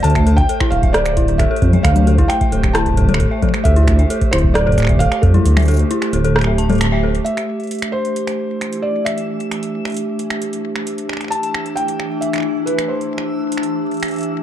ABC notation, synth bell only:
X:1
M:4/4
L:1/16
Q:1/4=133
K:Am
V:1 name="Synth bell"
A e A z A E z e A z E z A A A e | A z A E z e A z E z A A A e A z | A E z e A z E z A A A e A z A E | z e A z E z A A A e a A a e A z |
z16 | z16 | z16 | z16 |]